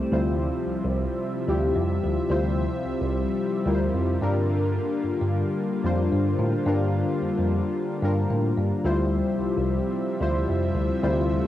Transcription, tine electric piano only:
0.12 0.47 D2 loud
0.67 0.73 C2 soft
0.84 1.05 C2 medium
1.49 1.70 D2 medium
1.76 1.97 F2 medium
2.03 2.17 D2 medium
2.30 2.65 D2 loud
2.85 2.92 C2 soft
3.02 3.23 C2 medium
3.66 3.87 D2 loud
3.94 4.15 F2 medium
4.21 4.77 G2 medium
5.04 5.10 G2 soft
5.21 5.42 G2 medium
5.85 6.06 F2 medium
6.12 6.33 G2 medium
6.39 6.53 A2 medium
6.66 7.01 G2 loud
7.21 7.28 F2 soft
7.39 7.60 F2 medium
8.03 8.24 G2 medium
8.30 8.51 A2 medium
8.57 8.71 G2 medium
8.85 9.19 D2 loud
9.39 9.46 C2 soft
9.57 9.78 C2 medium
10.21 10.42 D2 medium
10.49 10.70 F2 medium
10.75 10.89 D2 medium
11.03 11.37 D2 loud

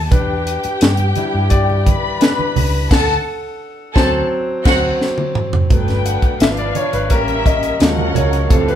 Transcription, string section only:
0.12 1.83 G4 medium
0.12 1.83 G5 medium
1.86 2.89 B4 medium
1.86 2.89 B5 medium
2.90 3.14 A4 medium
2.90 3.14 A5 loud
3.95 4.19 A4 medium
3.95 4.19 A5 medium
4.66 4.90 F#4 loud
4.66 4.89 F#5 loud
5.71 6.39 D4 medium
5.71 6.39 B4 medium
5.71 6.39 G5 medium
6.40 7.09 D4 medium
6.40 7.09 B4 medium
6.40 7.09 F5 medium
7.10 7.79 C#4 medium
7.10 7.79 A#4 medium
7.10 7.79 E5 medium
7.80 8.49 C#4 medium
7.80 8.49 A#4 medium
7.80 8.49 F#5 medium
8.50 8.75 C4 medium
8.50 8.75 A4 medium
8.50 8.75 F5 medium

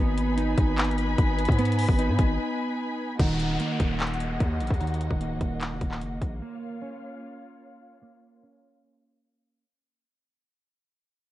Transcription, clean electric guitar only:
0.00 1.57 B3 medium
0.37 1.97 D#4 medium
1.59 3.20 B3 loud
1.99 3.19 D#4 medium
3.20 4.79 D#3 medium
3.60 5.20 A#3 medium
4.81 6.42 D#3 medium
5.21 6.41 A#3 medium
6.42 8.01 A#3 medium
6.82 8.42 C#4 medium
8.02 9.64 A#3 medium
8.43 9.64 C#4 medium

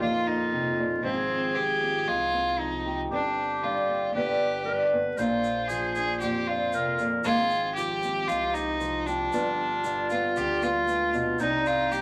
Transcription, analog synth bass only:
0.01 1.00 F2 loud
1.04 2.09 G#1 medium
2.08 3.07 C2 loud
3.11 4.10 G1 medium
4.15 5.14 G1 loud
5.19 6.23 A#1 medium
6.22 7.21 F2 loud
7.26 8.30 G#1 medium
8.29 9.28 C2 loud
9.33 10.38 G1 medium
10.37 11.36 D2 loud
11.40 12.02 C2 loud

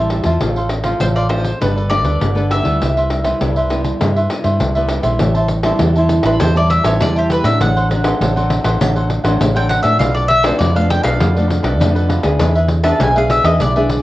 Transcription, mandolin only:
1.01 1.06 C5 medium
1.16 1.29 D5 medium
1.29 1.61 C5 medium
1.62 1.89 B4 medium
1.90 2.46 D5 medium
2.51 4.57 E5 loud
6.26 6.40 B4 medium
6.41 6.55 C5 medium
6.57 6.71 D5 medium
6.70 6.85 E5 medium
6.85 7.00 C#5 medium
7.02 7.16 D5 medium
7.19 7.32 G4 soft
7.32 7.46 B4 medium
7.45 7.60 E5 medium
7.61 8.77 F#5 medium
9.57 9.69 G5 medium
9.69 9.82 F#5 loud
9.83 9.99 E5 medium
9.99 10.14 F5 medium
10.15 10.30 D5 medium
10.28 10.44 E5 loud
10.43 10.58 C5 medium
10.59 10.74 D5 medium
10.76 10.90 F5 medium
10.90 11.03 G5 loud
11.03 11.90 F5 medium
12.84 12.99 A5 medium
13.01 13.15 G#5 medium
13.18 13.30 F5 medium
13.30 13.45 E5 medium
13.45 13.59 D#5 medium
13.61 14.02 D5 medium

